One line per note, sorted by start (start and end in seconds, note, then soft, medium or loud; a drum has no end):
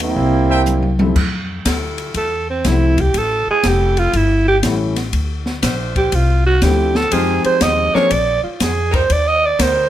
0.00 0.12 D#2 medium
0.00 0.95 G3 medium
0.00 0.95 A#3 medium
0.00 0.95 C4 medium
0.00 0.96 E4 medium
0.16 1.12 C2 medium
0.16 kick soft
0.50 0.61 A#4 medium
0.50 0.61 C5 medium
0.50 0.61 E5 medium
0.50 0.61 G5 loud
0.66 hi-hat pedal medium
0.66 high tom soft
0.82 high tom medium
0.99 1.14 F3 medium
0.99 1.14 G3 medium
0.99 1.15 A3 soft
0.99 1.14 C4 medium
0.99 1.15 E4 medium
0.99 high tom loud
1.16 1.64 F2 medium
1.16 kick medium
1.16 crash medium
1.65 2.13 D2 medium
1.65 2.42 G3 medium
1.65 2.42 E4 medium
1.65 2.42 F4 medium
1.65 2.42 A4 loud
1.65 kick soft
1.65 snare medium
1.65 hi-hat pedal medium
1.65 ride medium
1.98 ride soft
2.14 2.63 E2 medium
2.14 2.47 A4 medium
2.14 kick soft
2.14 ride medium
2.50 2.69 C4 medium
2.64 3.13 C2 loud
2.64 2.95 F3 medium
2.64 2.94 G3 medium
2.64 2.95 A3 soft
2.64 2.95 C4 soft
2.64 2.95 E4 medium
2.64 3.02 E4 medium
2.64 kick soft
2.64 snare medium
2.64 hi-hat pedal medium
2.64 ride medium
2.98 3.20 G4 medium
2.98 kick medium
2.98 ride soft
3.14 3.45 A1 medium
3.14 kick soft
3.14 ride medium
3.18 3.49 A4 loud
3.47 3.69 G#4 loud
3.47 muted upright bass stroke soft
3.63 4.12 F1 medium
3.63 4.40 G3 medium
3.63 4.40 C#4 medium
3.63 4.40 E4 medium
3.63 4.39 A4 loud
3.63 kick soft
3.63 snare medium
3.63 hi-hat pedal medium
3.63 ride medium
3.68 4.00 G4 medium
3.97 4.18 F4 medium
3.97 ride soft
4.13 4.62 G1 medium
4.13 4.47 E4 medium
4.13 kick soft
4.13 ride medium
4.48 4.57 G4 loud
4.63 5.11 A1 loud
4.63 4.93 E3 medium
4.63 4.93 G3 medium
4.63 4.93 A3 medium
4.63 4.93 C#4 soft
4.63 4.93 E4 medium
4.63 kick soft
4.63 snare medium
4.63 hi-hat pedal medium
4.63 ride medium
4.96 snare soft
4.96 ride medium
5.13 5.61 D2 medium
5.13 kick soft
5.13 ride medium
5.46 snare medium
5.62 6.11 A#1 medium
5.62 6.38 A3 medium
5.62 6.39 D4 medium
5.62 6.39 F4 medium
5.62 6.38 C5 loud
5.62 kick soft
5.62 snare medium
5.62 hi-hat pedal medium
5.62 ride medium
5.96 6.17 G4 medium
5.96 kick medium
5.96 ride soft
6.12 6.60 C2 medium
6.12 6.46 F4 medium
6.12 kick soft
6.12 ride medium
6.46 6.65 F#4 loud
6.62 7.10 D2 loud
6.62 6.92 F3 soft
6.62 6.91 A3 soft
6.62 6.92 C4 soft
6.62 6.92 D4 soft
6.62 6.92 E4 medium
6.62 6.98 G4 medium
6.62 kick soft
6.62 snare medium
6.62 hi-hat pedal medium
6.62 ride medium
6.95 7.15 A4 loud
6.95 snare medium
7.11 7.42 F2 medium
7.11 7.88 F3 medium
7.11 7.88 G#3 medium
7.11 7.34 G#3 medium
7.11 7.88 C4 medium
7.11 7.88 D#4 medium
7.11 7.35 D#4 medium
7.11 7.34 F4 medium
7.11 7.88 G4 medium
7.11 7.45 G#4 medium
7.11 7.34 C5 medium
7.11 kick soft
7.11 ride medium
7.44 7.64 C5 loud
7.44 muted upright bass stroke soft
7.44 ride soft
7.61 7.92 D#2 medium
7.61 7.96 D#5 loud
7.61 kick soft
7.61 snare medium
7.61 hi-hat pedal medium
7.61 ride medium
7.94 8.09 F3 medium
7.94 8.06 G#3 medium
7.94 8.09 A#3 medium
7.94 8.09 C4 medium
7.94 8.05 D4 medium
7.94 8.09 D4 medium
7.94 8.06 F4 medium
7.94 8.10 G#4 medium
7.94 8.05 A#4 loud
7.94 8.13 C#5 loud
7.94 muted upright bass stroke soft
7.94 snare soft
8.11 8.41 A#1 medium
8.11 8.43 D5 loud
8.11 kick soft
8.11 ride medium
8.44 8.60 F4 medium
8.44 muted upright bass stroke soft
8.60 9.08 F2 medium
8.60 8.96 G#4 medium
8.60 kick soft
8.60 snare medium
8.60 hi-hat pedal medium
8.60 ride medium
8.91 9.03 G3 medium
8.91 9.03 D4 medium
8.91 9.03 D#4 medium
8.91 9.03 A#4 loud
8.91 9.14 C5 medium
8.91 kick medium
8.91 ride medium
9.10 9.58 D#2 medium
9.10 9.29 D5 medium
9.10 kick soft
9.10 ride medium
9.28 9.47 D#5 loud
9.46 9.63 D5 medium
9.58 9.89 D2 loud
9.58 9.89 G3 medium
9.58 9.89 D4 medium
9.58 9.89 D#4 medium
9.58 9.89 A#4 medium
9.58 9.89 C5 medium
9.58 kick soft
9.58 snare medium
9.58 hi-hat pedal medium
9.58 ride medium